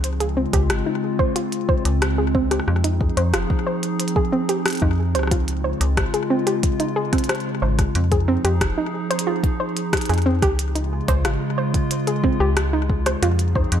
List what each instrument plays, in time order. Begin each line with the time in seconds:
Already playing: fm bass C#2, ambient pad C4
0.04 ambient pad C#3 G#3 F4, closed hi-hat
0.20 synth arpeggio sound G#4, closed hi-hat
0.37 synth arpeggio sound C4
0.53 fm bass C#2, synth arpeggio sound G4, kick, closed hi-hat
0.70 fm bass G#1, cross-stick, closed hi-hat
0.86 synth arpeggio sound D#4
1.19 synth arpeggio sound C5, kick
1.36 synth arpeggio sound F4, closed hi-hat
1.52 closed hi-hat
1.69 synth arpeggio sound C5, kick
1.85 fm bass C#2, closed hi-hat
2.02 cross-stick, closed hi-hat
2.18 synth arpeggio sound G#4
2.35 synth arpeggio sound C4, kick
2.51 synth arpeggio sound G4, cross-stick, closed hi-hat
2.60 cross-stick
2.67 fm bass F2, ambient pad F3 D#4 G#4, cross-stick
2.76 cross-stick
2.84 synth arpeggio sound D#4, closed hi-hat
3.01 kick
3.17 fm bass F2, synth arpeggio sound C5, closed hi-hat
3.33 fm bass F1, synth arpeggio sound F4, cross-stick, closed hi-hat
3.50 kick
3.67 synth arpeggio sound C5
3.83 closed hi-hat
4.00 closed hi-hat
4.08 closed hi-hat
4.16 synth arpeggio sound G#4, kick
4.32 synth arpeggio sound C4
4.49 synth arpeggio sound G4, closed hi-hat
4.66 cross-stick, closed hi-hat
4.68 closed hi-hat
4.70 closed hi-hat
4.73 closed hi-hat
4.75 closed hi-hat
4.77 closed hi-hat
4.80 fm bass F2, synth arpeggio sound D#4, kick, closed hi-hat
5.15 fm bass C#2, synth arpeggio sound C5, cross-stick, closed hi-hat
5.19 cross-stick
5.23 cross-stick
5.27 synth arpeggio sound F4, kick, cross-stick
5.31 ambient pad C#3 G#3 F4, closed hi-hat
5.48 closed hi-hat
5.64 synth arpeggio sound C5
5.81 fm bass C#2, closed hi-hat
5.97 fm bass G#1, kick, cross-stick, closed hi-hat
6.14 synth arpeggio sound G#4, closed hi-hat
6.30 synth arpeggio sound C4
6.47 synth arpeggio sound G4, closed hi-hat
6.63 kick, closed hi-hat
6.80 synth arpeggio sound D#4, closed hi-hat
6.96 synth arpeggio sound G#4
7.13 synth arpeggio sound C4, kick, cross-stick, closed hi-hat
7.18 closed hi-hat
7.24 closed hi-hat
7.29 synth arpeggio sound C5, cross-stick, closed hi-hat
7.35 closed hi-hat
7.40 closed hi-hat
7.62 fm bass G#1, synth arpeggio sound C5
7.79 kick, cross-stick, closed hi-hat
7.95 fm bass F2, ambient pad F3 D#4 G#4, closed hi-hat
8.12 synth arpeggio sound G#4, kick, closed hi-hat
8.28 synth arpeggio sound C4
8.45 fm bass F2, synth arpeggio sound G4, closed hi-hat
8.61 fm bass F1, kick, cross-stick, closed hi-hat
8.78 synth arpeggio sound D#4
9.10 synth arpeggio sound C5, closed hi-hat
9.19 closed hi-hat
9.27 synth arpeggio sound F4
9.43 kick, closed hi-hat
9.60 synth arpeggio sound C5
9.77 closed hi-hat
9.93 kick, cross-stick, closed hi-hat
9.97 closed hi-hat
10.01 closed hi-hat
10.05 fm bass F2, synth arpeggio sound G#4, closed hi-hat
10.09 closed hi-hat
10.14 closed hi-hat
10.18 closed hi-hat
10.22 synth arpeggio sound C4, closed hi-hat
10.42 fm bass C#2, synth arpeggio sound G4, kick, cross-stick, closed hi-hat
10.59 ambient pad C#3 G#3 F4, closed hi-hat
10.75 synth arpeggio sound D#4, closed hi-hat
11.08 fm bass C#2, synth arpeggio sound C5, kick, closed hi-hat
11.25 fm bass G#1, synth arpeggio sound F4, cross-stick, closed hi-hat
11.58 synth arpeggio sound C5
11.74 kick, closed hi-hat
11.91 closed hi-hat
12.07 synth arpeggio sound G#4, closed hi-hat
12.24 synth arpeggio sound C4, kick
12.40 fm bass C#2, synth arpeggio sound G4
12.57 cross-stick, closed hi-hat
12.73 synth arpeggio sound D#4
12.90 kick
13.06 synth arpeggio sound C5, cross-stick, closed hi-hat
13.22 fm bass F2, ambient pad F3 C4 D#4 G#4, synth arpeggio sound F4, closed hi-hat
13.39 closed hi-hat
13.55 synth arpeggio sound C5, kick
13.72 fm bass F2, closed hi-hat